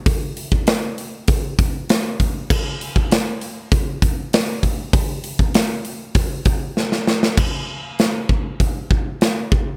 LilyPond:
\new DrumStaff \with { instrumentName = "Drums" } \drummode { \time 4/4 \tempo 4 = 98 <hho bd>8 hho16 bd16 <hho sn>8 hho8 <hho bd>8 <hho bd>8 <hho sn>8 <hho bd>8 | <cymc bd>8 hho16 bd16 <hho sn>8 hho8 <hho bd>8 <hho bd>8 <hho sn>8 <hho bd>8 | <hho bd>8 hho16 bd16 <hho sn>8 hho8 <hho bd>8 <hho bd>8 sn16 sn16 sn16 sn16 | <cymc bd>4 <hho sn>8 bd8 <hho bd>8 bd8 <hho sn>8 bd8 | }